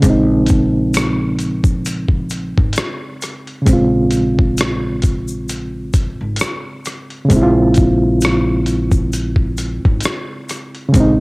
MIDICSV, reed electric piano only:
0, 0, Header, 1, 2, 480
1, 0, Start_track
1, 0, Key_signature, -5, "minor"
1, 0, Tempo, 909091
1, 15, Time_signature, 4, 2, 24, 8
1, 5914, End_track
2, 0, Start_track
2, 0, Title_t, "Reed electric piano"
2, 0, Program_c, 0, 4
2, 0, Control_c, 0, 64, 127
2, 0, Note_on_c, 0, 49, 63
2, 10, Note_on_c, 0, 56, 59
2, 22, Control_c, 0, 64, 0
2, 31, Note_on_c, 0, 60, 56
2, 52, Note_on_c, 0, 63, 69
2, 120, Control_c, 0, 64, 127
2, 1902, Note_off_c, 0, 49, 0
2, 1911, Note_on_c, 0, 49, 62
2, 1912, Note_off_c, 0, 56, 0
2, 1922, Note_off_c, 0, 60, 0
2, 1930, Note_on_c, 0, 56, 55
2, 1932, Note_off_c, 0, 63, 0
2, 1949, Note_on_c, 0, 60, 49
2, 1969, Note_on_c, 0, 65, 63
2, 3822, Note_off_c, 0, 49, 0
2, 3827, Note_on_c, 0, 49, 75
2, 3832, Note_off_c, 0, 56, 0
2, 3841, Note_off_c, 0, 60, 0
2, 3847, Note_on_c, 0, 56, 73
2, 3851, Note_off_c, 0, 65, 0
2, 3868, Note_on_c, 0, 60, 63
2, 3888, Note_on_c, 0, 64, 65
2, 3910, Note_off_c, 0, 64, 0
2, 3921, Note_on_c, 0, 65, 88
2, 5740, Note_off_c, 0, 49, 0
2, 5748, Note_on_c, 0, 49, 76
2, 5750, Note_off_c, 0, 56, 0
2, 5760, Note_off_c, 0, 60, 0
2, 5768, Note_on_c, 0, 56, 67
2, 5787, Note_off_c, 0, 65, 0
2, 5789, Note_on_c, 0, 60, 63
2, 5810, Note_on_c, 0, 63, 88
2, 5914, Note_off_c, 0, 49, 0
2, 5914, Note_off_c, 0, 56, 0
2, 5914, Note_off_c, 0, 60, 0
2, 5914, Note_off_c, 0, 63, 0
2, 5914, End_track
0, 0, End_of_file